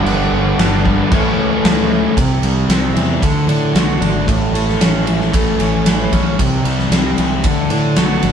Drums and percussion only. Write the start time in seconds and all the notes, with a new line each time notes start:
0.06 crash
0.59 snare, crash
0.85 kick
1.12 kick, crash
1.65 snare, crash
2.17 kick, ride
2.43 ride
2.70 snare, ride
2.97 ride
3.22 kick, ride
3.49 ride
3.76 snare, ride
4.02 ride
4.28 kick, ride
4.55 ride
4.69 snare
4.81 snare, ride
5.07 ride
5.21 snare
5.34 kick, ride
5.60 ride
5.86 snare, ride
6.13 kick, ride
6.39 kick, ride
6.65 ride
6.79 snare
6.92 snare, ride
7.18 ride
7.44 kick, ride
7.70 ride
7.96 snare, ride
8.23 ride